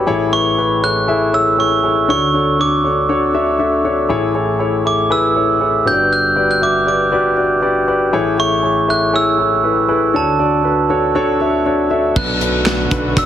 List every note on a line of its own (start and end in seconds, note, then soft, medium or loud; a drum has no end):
0.07 2.05 A1 medium
0.07 2.04 A2 medium
0.07 0.25 E4 medium
0.07 0.25 G#4 medium
0.07 0.25 A4 medium
0.07 0.25 C#5 loud
0.32 0.50 E4 medium
0.32 0.50 G#4 medium
0.32 0.51 A4 medium
0.32 0.51 B4 medium
0.32 0.84 C#6 medium
0.58 0.76 E4 medium
0.58 0.76 G#4 soft
0.58 0.76 A4 soft
0.58 0.76 B4 medium
0.82 1.01 E4 medium
0.82 1.01 G#4 soft
0.82 1.01 A4 medium
0.82 1.01 C#5 medium
0.82 1.30 F#6 medium
1.08 1.26 E4 medium
1.08 1.26 G#4 medium
1.08 1.26 A4 medium
1.08 1.26 E5 medium
1.33 1.51 E4 medium
1.33 1.51 G#4 medium
1.33 1.51 A4 medium
1.33 1.51 C#5 medium
1.33 1.60 E6 medium
1.58 1.76 E4 medium
1.58 1.76 G#4 medium
1.58 1.76 A4 medium
1.58 1.76 C#5 medium
1.58 2.09 C#6 medium
1.83 2.01 E4 medium
1.83 2.02 G#4 soft
1.83 2.01 A4 medium
1.83 2.02 C#5 medium
2.08 4.06 D2 soft
2.08 4.06 D3 soft
2.08 2.26 D4 medium
2.08 2.27 F#4 medium
2.08 2.27 A4 medium
2.08 2.27 C#5 medium
2.08 2.61 C#6 medium
2.34 2.52 D4 medium
2.34 2.52 F#4 medium
2.34 2.52 A4 medium
2.34 2.52 C#5 medium
2.59 2.77 D4 medium
2.59 2.77 F#4 medium
2.59 2.77 A4 soft
2.59 2.77 C#5 medium
2.59 3.82 D6 medium
2.84 3.02 D4 medium
2.84 3.02 F#4 soft
2.84 3.02 A4 soft
2.84 3.02 C#5 medium
3.09 3.27 D4 medium
3.09 3.27 F#4 medium
3.09 3.27 A4 medium
3.09 3.27 C#5 medium
3.34 3.52 D4 medium
3.34 3.52 F#4 medium
3.34 3.53 A4 medium
3.34 3.53 E5 medium
3.59 3.77 D4 medium
3.59 3.77 F#4 medium
3.59 3.78 A4 medium
3.59 3.78 E5 medium
3.84 4.03 D4 medium
3.84 4.03 F#4 medium
3.84 4.03 A4 medium
3.84 4.03 C#5 medium
4.09 5.82 A1 medium
4.09 5.82 A2 medium
4.09 4.28 E4 medium
4.09 4.28 G#4 medium
4.09 4.28 A4 medium
4.09 4.28 C#5 medium
4.34 4.53 E4 medium
4.34 4.53 G#4 medium
4.34 4.53 A4 medium
4.34 4.53 C#5 medium
4.59 4.78 E4 medium
4.59 4.78 G#4 medium
4.59 4.78 A4 medium
4.59 4.78 C#5 medium
4.85 5.03 E4 medium
4.85 5.04 G#4 soft
4.85 5.04 A4 medium
4.85 5.04 E5 medium
4.85 5.12 D6 medium
5.10 5.29 E4 medium
5.10 5.29 G#4 medium
5.10 5.29 A4 medium
5.10 5.29 B4 medium
5.10 5.83 E6 medium
5.35 5.54 E4 medium
5.35 5.54 G#4 soft
5.35 5.54 A4 medium
5.35 5.54 C#5 medium
5.60 5.79 E4 medium
5.60 5.79 G#4 soft
5.60 5.79 A4 medium
5.60 5.79 C#5 medium
5.85 7.84 G1 soft
5.85 7.84 G2 soft
5.85 6.26 F#4 medium
5.85 6.26 G4 medium
5.85 6.26 B4 medium
5.85 5.92 C#5 medium
5.85 6.13 G6 medium
5.92 6.30 D5 medium
6.13 6.50 F#6 medium
6.36 6.54 F#4 medium
6.36 6.54 G4 medium
6.36 6.55 B4 medium
6.36 6.55 D5 medium
6.51 6.56 F#6 medium
6.61 6.80 F#4 medium
6.61 6.80 G4 medium
6.61 6.80 B4 soft
6.61 6.80 E5 medium
6.61 6.87 D6 medium
6.86 7.05 F#4 medium
6.86 7.05 G4 soft
6.86 7.05 B4 medium
6.86 7.05 D5 medium
6.86 7.59 D6 medium
7.12 7.30 F#4 medium
7.12 7.30 G4 medium
7.12 7.30 B4 medium
7.12 7.31 D5 medium
7.37 7.55 F#4 medium
7.37 7.55 G4 soft
7.37 7.55 B4 medium
7.37 7.56 D5 medium
7.62 7.80 F#4 medium
7.62 7.81 G4 medium
7.62 7.81 B4 medium
7.62 7.81 D5 medium
7.88 8.06 F#4 medium
7.88 8.06 G4 medium
7.88 8.06 B4 medium
7.88 8.06 D5 medium
8.13 10.11 A1 medium
8.13 10.11 A2 medium
8.13 8.31 E4 medium
8.13 8.31 G#4 medium
8.13 8.31 A4 medium
8.13 8.31 C#5 medium
8.38 8.56 E4 medium
8.38 8.56 G#4 medium
8.38 8.57 A4 medium
8.38 8.57 E5 medium
8.38 8.91 C#6 medium
8.62 8.81 E4 medium
8.62 8.81 G#4 medium
8.62 8.81 A4 medium
8.62 8.81 C#5 medium
8.88 9.06 E4 medium
8.88 9.07 G#4 medium
8.88 9.07 A4 medium
8.88 9.07 E5 medium
8.88 9.15 F#6 medium
9.13 9.32 E4 medium
9.13 9.32 G#4 medium
9.13 9.32 A4 medium
9.13 9.32 C#5 medium
9.13 10.19 E6 medium
9.38 9.57 E4 medium
9.38 9.57 G#4 medium
9.38 9.57 A4 medium
9.38 9.57 C#5 medium
9.63 9.82 E4 medium
9.63 9.82 G#4 medium
9.63 9.82 A4 medium
9.63 9.82 B4 medium
9.88 10.07 E4 medium
9.88 10.07 G#4 medium
9.88 10.07 A4 medium
9.88 10.07 B4 medium
10.14 12.12 D2 soft
10.14 12.12 D3 soft
10.14 10.32 D4 medium
10.14 10.32 F#4 medium
10.14 10.33 A4 medium
10.14 10.33 C#5 medium
10.14 11.63 A5 medium
10.39 10.57 D4 medium
10.39 10.58 F#4 medium
10.39 10.58 A4 medium
10.39 10.58 D5 medium
10.64 10.83 D4 medium
10.64 10.83 F#4 medium
10.64 10.83 A4 medium
10.64 10.83 B4 medium
10.89 11.08 D4 medium
10.89 11.08 F#4 medium
10.89 11.08 A4 medium
10.89 11.08 C#5 medium
11.15 11.33 D4 medium
11.15 11.33 F#4 medium
11.15 11.34 A4 medium
11.15 11.34 C#5 loud
11.40 11.59 D4 medium
11.40 11.59 F#4 medium
11.40 11.59 A4 medium
11.40 11.59 E5 medium
11.66 11.84 D4 medium
11.66 11.84 F#4 medium
11.66 11.84 A4 medium
11.66 11.84 C#5 medium
11.90 12.09 D4 medium
11.90 12.09 F#4 medium
11.90 12.09 A4 medium
11.90 12.09 E5 medium
12.16 12.88 B1 medium
12.16 12.88 B2 medium
12.16 13.26 D3 medium
12.16 13.26 A3 medium
12.16 13.26 B3 medium
12.16 13.26 F#4 medium
12.16 12.35 B4 medium
12.16 13.13 F#6 loud
12.16 kick loud
12.16 crash medium
12.41 12.59 D4 medium
12.41 12.60 F#4 medium
12.41 12.60 A4 medium
12.41 12.60 B4 medium
12.41 closed hi-hat medium
12.66 12.84 D4 medium
12.66 12.85 F#4 medium
12.66 12.85 B4 medium
12.66 snare loud
12.66 clap medium
12.66 closed hi-hat medium
12.91 13.26 B1 loud
12.91 13.10 D4 medium
12.91 13.10 F#4 medium
12.91 13.10 A4 medium
12.91 13.10 B4 medium
12.91 kick medium
12.91 closed hi-hat medium
13.16 13.26 D4 medium
13.16 13.26 F#4 medium
13.16 13.26 A4 medium
13.16 13.26 B4 medium
13.16 13.26 E6 medium
13.16 kick medium
13.16 closed hi-hat medium